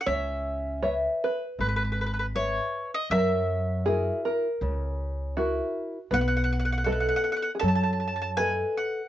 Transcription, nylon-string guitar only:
X:1
M:4/4
L:1/8
Q:"Swing" 1/4=79
K:C#m
V:1 name="Nylon-string guitar"
C2 [Bce]2 G,2 [Bce]2 | F,2 [EF^A]2 C,2 [EFA]2 | B,2 [ABd]2 F,2 [ABd]2 |]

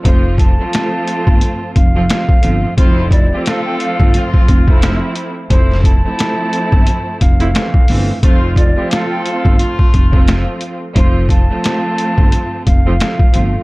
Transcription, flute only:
X:1
M:4/4
L:1/16
Q:"Swing 16ths" 1/4=88
K:F
V:1 name="Flute"
c2 a8 f6 | c2 d2 f g f3 z6 z | c2 a8 f6 | c2 d2 f g f3 z6 z |
c2 a8 f6 |]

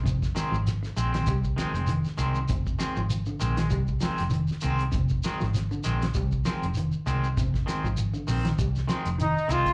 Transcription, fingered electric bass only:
X:1
M:4/4
L:1/16
Q:"Swing 16ths" 1/4=99
K:Fdor
V:1 name="Fingered electric bass" clef=bass
F,,,2 z A,,,2 z B,,,2 C,,2 z F,,,2 z C,,2 | F,,,2 z A,,,2 z B,,,2 C,,2 z F,,,2 z C,,2 | F,,,2 z A,,,2 z B,,,2 C,,2 z F,,,2 z C,,2 | F,,,2 z A,,,2 z B,,,2 C,,2 z F,,,2 z C,,2 |]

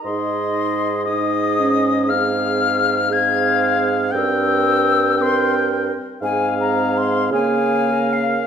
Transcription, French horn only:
X:1
M:6/8
L:1/16
Q:3/8=58
K:Ab
V:1 name="French horn"
E6 E3 D3 | [K:Fm] C6 C6 | C6 C4 z2 | C6 B,6 |]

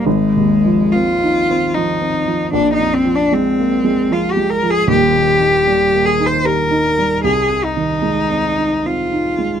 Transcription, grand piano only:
X:1
M:3/4
L:1/8
Q:1/4=75
K:Eb
V:1 name="Grand piano" clef=bass
(3A,,, E,, F, (3C E C (3F, C F, | (3B,,, F,, F, (3A, B, A, (3F, A, F, | (3[E,,,E,,] B,, E, (3G, B, E (3G E G, | (3C,, C, E, (3A, C E (3C E A, |]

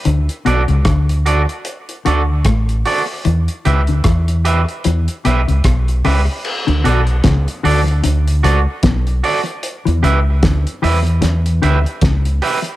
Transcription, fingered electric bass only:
X:1
M:4/4
L:1/16
Q:"Swing 16ths" 1/4=75
K:D
V:1 name="Fingered electric bass" clef=bass
D,, z B,,, C,, D,,3 z3 D,,2 A,,,2 z2 | E,, z C,, D,, E,,3 z E,, z B,,, C,, B,,,2 C,, z | z D,, B,,,2 C,, z D,,2 D,,2 C,, z B,,,2 z2 | z E,, C,,2 D,, z E,,2 E,,2 D,, z C,,2 z2 |]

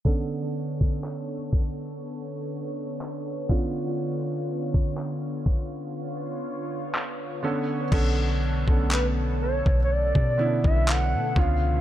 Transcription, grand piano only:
X:1
M:4/4
L:1/16
Q:"Swing 16ths" 1/4=61
K:C#phr
V:1 name="Grand piano"
[D,B,CA]4- [D,B,CA] z8 z [D,B,C^E]2- | [D,B,C^E]4 z8 z2 [D,B,CA]2 | [D,B,CA]2 z [D,B,CA]4 z3 [D,B,CE]4 [D,B,C^E]2 |]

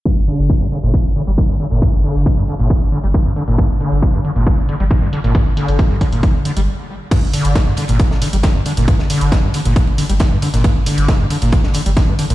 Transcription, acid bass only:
X:1
M:4/4
L:1/16
Q:1/4=136
K:Gm
V:1 name="Acid bass" clef=bass
G,, z D,2 B,, G,, D, B,, z2 D, G, B,, G,, D, B,, | G,, z D,2 B,, G,, D, B,, z2 D, G, B,, G,, D, B,, | G,, z D,2 B,, G,, D, B,, z2 D, G, B,, G,, D, B,, | G,, z D,2 B,, G,, D, B,, z2 D, G, z4 |
G,, z D,2 B,, G,, D, B,, z2 D, G, B,, G,, D, B,, | G,, z D,2 B,, G,, D, B,, z2 D, G, B,, G,, D, B,, | G,, z D,2 B,, G,, D, B,, z2 D, G, B,, G,, D, B,, |]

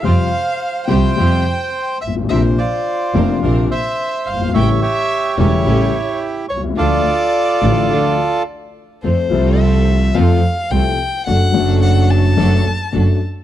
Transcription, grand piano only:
X:1
M:4/4
L:1/16
Q:1/4=107
K:Dm
V:1 name="Grand piano" clef=bass
[F,,C,F,G,F]2 z4 [C,,C,F,G,F]2 [F,,C,F,G,F]2 z4 z/2 G,,,/2 ^G,,,/2 A,,,/2 | [B,,,B,,C,F,B,D]2 z4 [F,,,F,,C,F,B,D]2 [B,,,B,,C,F,B,D]2 z4 z/2 ^F,,,/2 G,,,/2 ^G,,,/2 | [A,,,A,,^C,G,A,E]2 z4 [E,,,E,,C,G,A,E]2 [A,,,A,,C,G,A,E]2 z4 z/2 =B,,,/2 =C,,/2 ^C,,/2 | [D,,D,F,A,F]2 z4 [A,,,A,,D,F,A,F]2 [D,,D,F,A,F]2 z6 |
[K:F] [F,,F,A,CA]2 [C,,C,F,A,CA]6 [F,,F,A,CA]2 z2 [C,,C,F,A,CA]2 z2 | [^F,,^F,A,DA]2 [F,,F,A,DA]6 [F,,F,A,DA]2 z2 [F,,F,A,DA]2 z2 |]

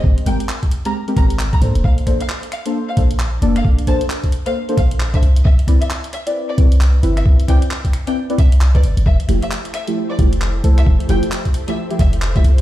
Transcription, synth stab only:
X:1
M:4/4
L:1/16
Q:"Swing 16ths" 1/4=133
K:F
V:1 name="Synth stab"
[_A,CGc]2 [A,CGB] z4 [A,CGB] z [A,CGB] [A,CGB] z3 [B,D=Ac]2- | [B,DAc]2 [B,DAc] z4 [B,DAc]3 [B,DAc] z3 [B,DAd]2- | [B,DAd]2 [B,DAc] z4 [B,DAc] z [B,DAc] z3 [B,DAc] z2 | z2 [CE=Bd] z4 [CEBd]3 [CEBd] z3 [CEBe]2- |
[CE=Be]2 [CEBd] z4 [CEBd] z [CEBd] z3 [CEBd] z2 | z2 [F,A,EG] z4 [F,A,EG]3 [F,A,EG] z3 [F,A,EA]2- | [F,A,EA]2 [F,A,EG] z4 [F,A,EG] z [F,A,EG] z3 [F,A,EG] z2 |]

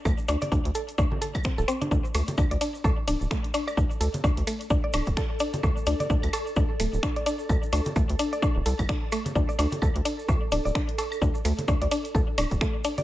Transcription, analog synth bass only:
X:1
M:4/4
L:1/16
Q:"Swing 16ths" 1/4=129
K:C
V:1 name="Analog synth bass" clef=bass
D,, z D,, z D,, D,, z2 D,, z4 D,,, z2 | D,, z D,, z D,, D,, z2 D,, z D,,, D,,, z4 | D,, z D,, z D,, D,, z2 D,, z D,,, D,,, z4 | D,, z D,, z D,, D,, z2 D,, z D,,, D,,, z4 |
D,, z D,, z D,, D,, z3 D,,, C,, C,, z4 | D,, z D,, z D,, D,, z2 D,, z D,,, D,,, z4 | D,, z D,, z D,, D,, z2 D,, z D,,, D,,, z4 |]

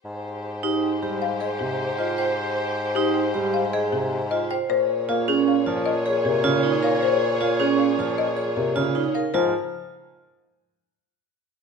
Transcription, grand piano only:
X:1
M:6/4
L:1/8
Q:1/4=155
K:Ab
V:1 name="Grand piano" clef=bass
z4 z G, z2 C, z3 | z4 z G, z2 C, z3 | z2 B, z2 F, z2 C, D, z2 | z2 B, z2 F, z2 C, D, z2 |
F, z8 z3 |]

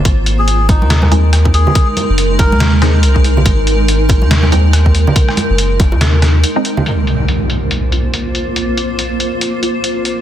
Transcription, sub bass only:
X:1
M:4/4
L:1/16
Q:"Swing 16ths" 1/4=141
K:Abmix
V:1 name="Sub bass" clef=bass
A,,,6- A,,, E,,8 z | z3 G,,,4 E,,4- E,, C,,4 | A,,,6- A,,, E,,8 z | z3 G,,,4 E,,4- E,, z4 |
z16 | z16 |]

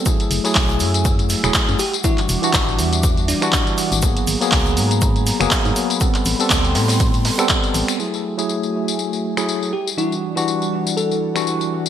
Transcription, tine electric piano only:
X:1
M:4/4
L:1/16
Q:"Swing 16ths" 1/4=121
K:E
V:1 name="Tine electric piano"
[F,A,EG]3 [F,A,EG]8 [F,A,EG]3 z2 | [E,=G,=DF]3 [E,G,DF]8 [E,G,DF]4- [E,G,DF] | [F,^A,B,G]3 [F,A,B,G]8 [F,A,B,G]4- [F,A,B,G] | [=G,B,=CA]3 [G,B,CA]8 [G,B,CA]4- [G,B,CA] |
[F,A,EG]3 [F,A,EG]8 [F,A,EG]3 z2 | [E,=G,=DF]3 [E,G,DF]8 [E,G,DF]4- [E,G,DF] |]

